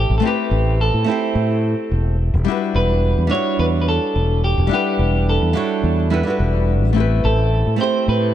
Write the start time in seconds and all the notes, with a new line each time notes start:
Already playing: A3 C4 E4 G4 C5
0.10 A1
0.18 A3 A4
0.22 C4 E4 G4
0.27 G4 B4
0.51 A1
0.81 A4
0.94 A2
1.04 A3 C4 E4
1.10 G4 C5
1.35 A2
1.91 E1
2.34 E1
2.45 G3 D4 E4
2.50 F#4 B4
2.75 E1 B4
3.18 E2
3.27 G3 D4 E4
3.31 F#4 C#5
3.59 E2 B4
3.82 B4
3.89 A4
4.16 E1
4.44 G4
4.58 E1
4.67 G3 D4
4.71 E4 G4 B4 F#5
4.99 E1
5.29 A4
5.42 E2
5.53 G3 D4 E4 F#4 C#5
5.83 E2
6.10 G3 D4 E4 F#4 B4
6.23 G3 D4 E4
6.28 F#4 B4
6.40 E1
6.82 A1
6.93 A3 C4 E4
6.98 G4 B4
7.24 A1 A4
7.67 A2
7.76 A3 C4 E4
7.81 G4 C5
8.08 A2 B4